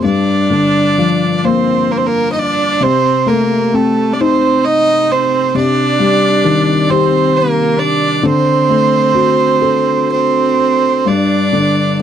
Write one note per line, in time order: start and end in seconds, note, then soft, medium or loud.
0.04 2.78 G2 medium
0.04 1.36 D4 medium
0.04 1.38 D5 medium
0.50 2.32 D3 soft
0.98 2.78 F3 soft
1.36 1.48 D4 soft
1.36 1.46 D5 medium
1.44 2.77 A#3 soft
1.44 1.93 C4 medium
1.44 1.93 C5 medium
1.91 1.99 A#3 medium
1.91 1.99 A#4 medium
1.98 2.09 C4 soft
1.98 2.08 C5 medium
2.06 2.31 A#3 medium
2.06 2.32 A#4 medium
2.32 2.40 D#4 soft
2.32 2.41 D#5 medium
2.39 2.86 D4 medium
2.39 2.84 D5 medium
2.80 5.51 C3 medium
2.80 3.29 C5 medium
2.84 3.30 C4 medium
3.26 5.06 A3 soft
3.26 3.76 A#3 medium
3.26 3.77 A#4 medium
3.74 4.14 A3 medium
3.74 5.52 C4 soft
3.74 4.15 A4 medium
4.13 4.22 D4 soft
4.13 4.22 D5 medium
4.20 4.67 C4 medium
4.20 5.52 D#4 soft
4.20 4.66 C5 medium
4.64 5.13 D#4 medium
4.64 5.13 D#5 loud
5.11 5.56 C4 medium
5.11 5.58 C5 medium
5.55 8.19 C3 medium
5.55 6.91 D4 medium
5.55 6.92 D5 medium
5.99 7.74 G3 medium
6.45 8.19 D#3 medium
6.89 7.34 C4 medium
6.89 8.19 G4 medium
6.89 7.38 C5 medium
7.33 7.79 A#3 medium
7.37 7.81 A#4 medium
7.77 8.25 D4 medium
7.77 8.27 D5 medium
8.23 11.02 D3 medium
8.23 10.10 C4 medium
8.23 10.11 C5 medium
8.69 10.54 A3 soft
9.14 11.01 F#4 soft
9.62 11.02 A4 soft
10.12 11.11 C4 medium
10.12 11.09 C5 medium
11.06 12.02 G2 soft
11.06 12.01 D4 medium
11.06 12.00 D5 medium
11.53 12.02 D3 soft